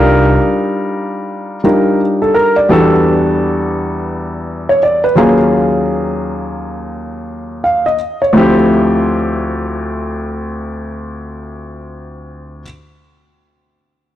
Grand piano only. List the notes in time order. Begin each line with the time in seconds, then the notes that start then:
Already playing: G3 D4 D#4 F4 A#4
1.64 G3 D4 D#4 F4 A#4
2.22 A4
2.34 A#4
2.56 D5
2.69 E2 G3 B3 D4 F#4 A4
4.69 C#5
4.83 D5
5.04 B4
5.15 D#2 F#3 A#3 C#4 F4 G#4
7.64 F5
7.86 D#5
8.22 C#5
8.33 D2 F3 A3 C4 E4
8.38 G4